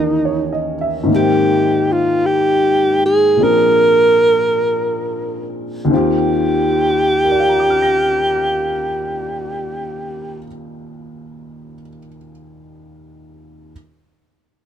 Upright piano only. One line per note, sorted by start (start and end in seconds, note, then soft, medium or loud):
0.00 1.08 D#2 soft
0.00 1.05 D#3 soft
0.00 1.09 E3 soft
0.00 1.08 C#4 soft
0.00 1.09 G4 medium
0.00 0.49 A#4 soft
0.25 0.73 C#5 soft
0.53 0.87 D#5 soft
0.81 1.20 E5 medium
1.03 3.36 G#2 medium
1.03 3.38 D#3 soft
1.09 3.39 A#3 soft
1.09 3.39 C4 soft
1.14 3.42 G5 medium
3.37 5.90 A#2 soft
3.37 5.90 F3 soft
3.37 5.89 C4 soft
3.37 5.92 D4 soft
3.42 5.92 G#4 soft
5.85 10.36 D#2 medium
5.85 10.39 D#3 medium
5.91 10.42 C4 medium
5.91 10.45 F4 medium
5.96 10.48 G4 medium
7.25 11.72 A#4 soft
7.32 11.79 D5 soft
7.40 11.87 F5 soft
7.49 11.97 A#5 soft
7.60 12.07 D6 soft
7.70 12.18 F6 soft
7.82 12.30 A#6 soft